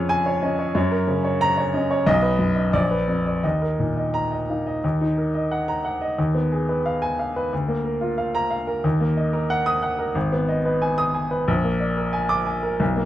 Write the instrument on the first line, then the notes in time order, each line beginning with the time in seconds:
grand piano
Already playing: F2 F3 C#4 G#4 C#5
0.09 G#5
0.26 C#5
0.42 C#4 D#5
0.59 C#5
0.75 F#2 C#5
0.92 A#4
1.08 C#3 C#4
1.25 C#5
1.41 A#5
1.58 C#5
1.74 C#4 D#5
1.91 C#5
2.06 B1 D#5
2.22 B4
2.39 F#2
2.56 D#5
2.73 A#1 D5
2.91 B4
3.08 F2
3.27 D5
3.43 D#2 D#5
3.62 A#4
3.79 A#2 D#4
3.97 D#5
4.14 A#5
4.32 D#5
4.50 D#4 F5
4.67 D#5
4.84 D#2
5.01 D#4
5.17 A#4
5.35 D#5
5.51 F#5
5.68 A#5
5.85 F#5
6.01 D#5
6.18 D#2
6.34 B3
6.52 G#4
6.69 B4
6.86 F5
7.02 G#5
7.19 F5
7.36 B4
7.53 D2
7.68 A#3
7.84 A#4
8.01 F4
8.18 F5
8.35 A#5
8.51 F5
8.67 A#4
8.84 D#2
9.00 A#3
9.17 D#5
9.33 A#4
9.50 F#5
9.66 D#6
9.83 F#5
9.99 A#4
10.15 G#1
10.32 B3
10.49 D#5
10.65 B4
10.82 G#5
10.98 D#6
11.14 G#5
11.31 B4
11.48 A#1
11.64 A#3
11.80 D5
11.97 A#4
12.13 G#5
12.29 D6
12.46 G#5
12.63 A#4
12.80 B1
12.97 A#3